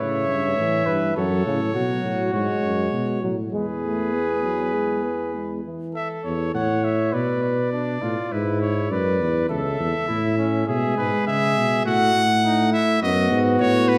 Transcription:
0.00 0.27 A2 medium
0.00 0.56 C#3 medium
0.00 0.88 C#5 loud
0.00 1.14 E5 medium
0.28 0.58 G2 medium
0.57 0.86 A2 medium
0.57 1.15 E3 medium
0.86 1.15 G2 medium
0.86 1.15 B4 medium
1.16 1.45 F#2 medium
1.16 1.45 F#3 medium
1.16 1.73 A4 medium
1.16 2.32 C#5 medium
1.46 1.74 A2 medium
1.46 1.59 C#3 medium
1.75 2.03 B2 medium
1.75 2.32 F#3 medium
1.75 3.21 F#4 medium
2.04 2.33 A2 medium
2.33 2.47 G#2 medium
2.33 3.21 G#3 medium
2.33 3.23 C#5 medium
2.62 2.91 F#2 medium
2.92 3.24 B2 medium
3.22 3.52 A2 medium
3.22 3.36 F#3 medium
3.52 5.61 E2 medium
3.52 3.66 G#3 medium
3.52 5.61 G#4 medium
3.52 5.61 B4 medium
3.83 4.15 A3 medium
4.13 4.42 B3 medium
4.43 4.75 F#3 medium
4.74 5.05 G#3 medium
5.03 5.34 B3 medium
5.34 5.64 G#3 medium
5.64 5.94 E3 medium
5.95 6.50 A4 medium
5.95 6.09 E5 medium
6.24 6.52 E2 medium
6.24 6.54 C#5 medium
6.54 7.15 A2 medium
6.54 7.14 C#5 medium
6.54 6.86 F#5 medium
6.84 7.16 E5 medium
7.13 8.01 B2 medium
7.13 7.72 B4 medium
7.13 7.43 D5 medium
7.43 8.34 D5 medium
7.72 8.04 D4 medium
8.02 8.15 A2 medium
8.02 8.34 F4 medium
8.32 8.92 G#2 loud
8.32 8.91 E4 medium
8.32 8.60 B4 medium
8.61 8.93 C#5 medium
8.91 9.22 F#2 medium
8.91 9.49 B4 medium
8.91 9.49 D5 medium
9.20 9.50 E2 medium
9.49 9.79 C#2 medium
9.49 10.08 A4 medium
9.49 10.66 E5 medium
9.80 9.93 E2 medium
10.08 10.67 A2 loud
10.08 10.37 E4 medium
10.38 10.66 C#4 medium
10.67 10.97 B2 medium
10.67 11.82 G#3 medium
10.67 11.25 G#4 medium
10.67 10.97 E5 medium
10.97 11.11 G#2 medium
10.97 11.26 B4 medium
11.26 11.58 C#3 medium
11.26 11.84 G#4 medium
11.26 11.85 E5 loud
11.57 11.88 B2 medium
11.85 12.15 A2 medium
11.85 13.00 A3 medium
11.85 12.23 F#4 medium
11.85 12.72 F#5 loud
12.15 12.74 A2 medium
12.44 12.74 D#4 medium
12.73 13.01 E4 medium
12.73 13.02 E5 loud
13.02 13.29 F#2 medium
13.02 13.98 B3 loud
13.02 13.98 F#4 loud
13.02 13.39 D#5 loud
13.31 13.60 G#2 medium
13.60 13.98 A2 medium
13.60 13.90 C#5 loud
13.89 13.98 B4 loud

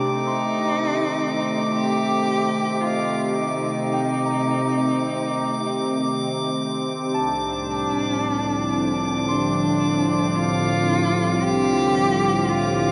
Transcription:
0.00 7.13 C3 medium
0.00 7.15 D#3 medium
0.00 7.13 A3 medium
0.00 12.92 C4 medium
0.00 0.17 D4 medium
0.00 7.13 G4 medium
0.00 2.98 G5 medium
0.00 3.28 A#5 soft
0.00 0.26 C6 medium
0.00 12.92 D6 medium
0.15 1.74 D#4 loud
0.27 3.57 C6 medium
1.75 2.82 G4 loud
2.80 3.37 F4 medium
2.86 6.21 D#5 medium
3.35 6.59 D#4 medium
3.93 7.28 G5 medium
4.25 7.57 A#5 soft
7.13 12.92 C2 medium
7.13 9.24 D4 medium
7.13 10.49 A5 medium
7.30 12.92 A2 medium
7.58 12.92 F3 medium
8.21 12.92 D3 medium
9.28 10.37 D4 medium
9.28 12.63 C6 medium
10.36 11.43 F4 loud
10.64 12.92 F4 medium
11.42 12.50 G4 loud
12.49 12.92 F4 loud

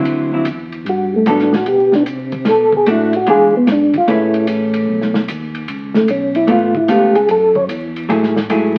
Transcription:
0.00 0.31 D3 medium
0.00 0.31 F#3 medium
0.00 0.31 C4 medium
0.00 0.31 E4 medium
0.05 0.45 D2 medium
0.05 ride medium
0.32 0.45 D3 medium
0.32 0.45 F#3 medium
0.32 0.46 C4 medium
0.32 0.46 E4 medium
0.45 0.85 E2 medium
0.45 hi-hat pedal medium
0.45 ride medium
0.72 ride soft
0.85 1.25 G2 medium
0.85 ride medium
0.89 1.14 F#4 medium
1.16 1.28 A3 medium
1.25 1.65 A2 medium
1.25 1.51 G3 medium
1.25 1.51 B3 medium
1.25 1.51 F#4 medium
1.25 1.51 A4 medium
1.25 hi-hat pedal medium
1.25 ride medium
1.30 1.55 D4 medium
1.39 snare soft
1.53 1.68 F#4 medium
1.53 snare soft
1.66 2.06 B2 medium
1.66 1.94 G4 medium
1.66 ride medium
1.92 2.03 D4 medium
1.92 snare soft
2.06 2.46 C3 medium
2.06 hi-hat pedal medium
2.06 ride medium
2.32 kick medium
2.32 ride soft
2.45 2.86 B2 medium
2.45 2.74 A4 medium
2.45 snare soft
2.45 ride medium
2.73 kick medium
2.77 2.89 G#4 medium
2.86 3.26 A2 medium
2.86 3.11 A3 soft
2.86 3.12 D4 medium
2.86 3.12 F#4 medium
2.86 hi-hat pedal medium
2.86 ride medium
2.91 3.15 E4 medium
3.13 3.29 F#4 medium
3.13 ride soft
3.26 3.52 E2 medium
3.26 3.51 E3 medium
3.26 3.52 G#3 medium
3.26 3.52 D4 medium
3.26 3.52 F4 medium
3.26 3.55 G#4 medium
3.26 ride medium
3.54 3.61 E2 soft
3.54 3.69 B3 medium
3.67 3.92 G#2 medium
3.67 snare soft
3.67 hi-hat pedal medium
3.67 ride medium
3.72 3.96 D4 medium
3.94 4.01 G#2 soft
3.94 kick medium
3.94 ride soft
3.98 4.09 F4 medium
4.08 4.47 A2 medium
4.08 5.20 A3 medium
4.08 5.21 C#4 medium
4.08 4.47 E4 medium
4.08 5.21 G#4 medium
4.08 5.21 B4 medium
4.08 ride medium
4.34 ride soft
4.47 4.87 A1 medium
4.47 hi-hat pedal medium
4.47 ride medium
4.74 ride medium
4.89 5.28 B1 medium
5.01 snare soft
5.14 snare soft
5.28 5.68 D#2 medium
5.28 hi-hat pedal medium
5.28 ride medium
5.55 ride soft
5.68 6.08 C#2 medium
5.68 ride medium
5.94 6.09 A3 medium
5.94 snare soft
6.08 6.48 B1 medium
6.08 6.36 C#4 medium
6.08 hi-hat pedal medium
6.08 ride medium
6.35 6.49 E4 medium
6.35 ride soft
6.47 6.88 A1 medium
6.47 6.72 A3 medium
6.47 6.73 B3 medium
6.47 6.73 F4 medium
6.47 ride medium
6.52 6.77 F4 medium
6.75 6.90 E4 medium
6.75 kick medium
6.88 7.28 C#2 medium
6.88 7.13 A3 medium
6.88 7.13 B3 medium
6.88 7.13 F4 medium
6.88 7.16 G4 medium
6.88 hi-hat pedal medium
6.88 ride medium
7.15 7.29 G#4 medium
7.15 ride soft
7.29 7.68 F#2 medium
7.29 7.56 A4 medium
7.29 ride medium
7.55 7.64 C#5 loud
7.55 kick medium
7.69 8.08 E2 medium
7.69 hi-hat pedal medium
7.69 ride medium
7.96 ride soft
8.09 8.48 A2 medium
8.09 8.33 F#3 medium
8.09 8.34 A3 medium
8.09 8.34 E4 medium
8.09 8.34 G#4 medium
8.09 ride medium
8.23 snare soft
8.36 snare soft
8.48 8.78 G#2 medium
8.48 8.74 F#3 medium
8.48 8.74 A3 medium
8.48 8.74 E4 medium
8.48 8.75 G#4 medium
8.48 hi-hat pedal medium
8.48 ride medium

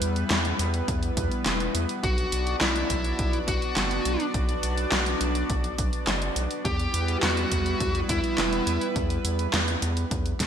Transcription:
0.00 0.24 E2 medium
0.00 1.99 G3 medium
0.00 6.61 B3 medium
0.00 2.00 E4 medium
0.00 2.00 B4 medium
0.00 closed hi-hat medium
0.16 closed hi-hat soft
0.30 0.53 E2 medium
0.30 snare loud
0.30 clap medium
0.30 closed hi-hat medium
0.45 closed hi-hat soft
0.59 0.82 E2 loud
0.59 closed hi-hat medium
0.74 closed hi-hat soft
0.88 1.11 E2 medium
0.88 kick loud
0.88 closed hi-hat medium
1.03 closed hi-hat soft
1.17 1.28 E2 loud
1.17 kick loud
1.17 closed hi-hat medium
1.31 closed hi-hat soft
1.46 1.69 E1 loud
1.46 snare loud
1.46 clap medium
1.46 closed hi-hat medium
1.60 closed hi-hat soft
1.75 1.86 E2 medium
1.75 closed hi-hat medium
1.89 closed hi-hat soft
2.03 2.26 B1 loud
2.03 6.61 D4 medium
2.03 2.54 F#4 loud
2.03 6.61 F#4 medium
2.03 6.61 D5 medium
2.03 kick loud
2.03 closed hi-hat medium
2.18 closed hi-hat soft
2.32 2.55 B1 medium
2.32 closed hi-hat medium
2.47 closed hi-hat soft
2.61 2.84 B1 medium
2.61 3.36 E4 loud
2.61 snare loud
2.61 clap medium
2.61 closed hi-hat medium
2.76 closed hi-hat soft
2.90 3.13 B1 loud
2.90 kick medium
2.90 closed hi-hat medium
3.04 closed hi-hat soft
3.19 3.42 B1 medium
3.19 kick loud
3.19 closed hi-hat medium
3.33 closed hi-hat soft
3.48 3.59 B1 loud
3.48 4.23 F#4 medium
3.48 kick loud
3.48 closed hi-hat medium
3.62 closed hi-hat soft
3.77 4.00 F#1 loud
3.77 snare loud
3.77 clap medium
3.77 closed hi-hat medium
3.91 closed hi-hat soft
4.05 4.17 B1 medium
4.05 closed hi-hat medium
4.20 closed hi-hat soft
4.34 4.57 B1 loud
4.34 kick loud
4.34 closed hi-hat medium
4.49 closed hi-hat soft
4.63 4.86 B1 medium
4.63 closed hi-hat medium
4.78 closed hi-hat soft
4.92 5.15 B1 medium
4.92 snare loud
4.92 clap loud
4.92 closed hi-hat medium
5.06 closed hi-hat soft
5.21 5.44 B1 loud
5.21 closed hi-hat medium
5.35 closed hi-hat soft
5.50 5.73 B1 medium
5.50 kick loud
5.50 closed hi-hat medium
5.64 closed hi-hat soft
5.78 5.90 B1 loud
5.78 kick loud
5.78 closed hi-hat medium
5.93 closed hi-hat soft
6.07 6.30 F#1 loud
6.07 snare loud
6.07 clap medium
6.07 closed hi-hat medium
6.22 closed hi-hat soft
6.36 6.48 B1 medium
6.36 closed hi-hat medium
6.51 closed hi-hat soft
6.65 6.88 E2 loud
6.65 10.47 G3 medium
6.65 10.47 B3 medium
6.65 10.47 E4 medium
6.65 7.15 G4 loud
6.65 10.47 B4 medium
6.65 kick loud
6.65 closed hi-hat medium
6.79 closed hi-hat soft
6.94 7.17 E2 medium
6.94 closed hi-hat medium
7.08 closed hi-hat soft
7.23 7.46 E2 medium
7.23 7.98 F#4 loud
7.23 snare loud
7.23 clap loud
7.23 closed hi-hat medium
7.37 closed hi-hat soft
7.52 7.74 E2 loud
7.52 kick medium
7.52 closed hi-hat medium
7.66 closed hi-hat soft
7.80 8.03 E2 medium
7.80 kick loud
7.80 closed hi-hat medium
7.95 closed hi-hat soft
8.09 8.21 E2 loud
8.09 8.84 E4 loud
8.09 kick loud
8.09 closed hi-hat medium
8.24 closed hi-hat soft
8.38 8.61 E1 loud
8.38 snare loud
8.38 clap loud
8.38 closed hi-hat medium
8.53 closed hi-hat soft
8.67 8.78 E2 medium
8.67 closed hi-hat medium
8.81 closed hi-hat soft
8.96 9.19 E2 loud
8.96 kick loud
8.96 closed hi-hat medium
9.10 closed hi-hat soft
9.25 9.47 E2 medium
9.25 closed hi-hat medium
9.39 closed hi-hat soft
9.53 9.76 E2 medium
9.53 snare loud
9.53 clap loud
9.53 closed hi-hat medium
9.68 closed hi-hat soft
9.82 10.05 E2 loud
9.82 closed hi-hat medium
9.97 closed hi-hat soft
10.11 10.34 E2 medium
10.11 kick loud
10.11 closed hi-hat medium
10.26 closed hi-hat soft
10.40 10.47 E2 medium
10.40 kick loud
10.40 snare medium
10.40 closed hi-hat loud

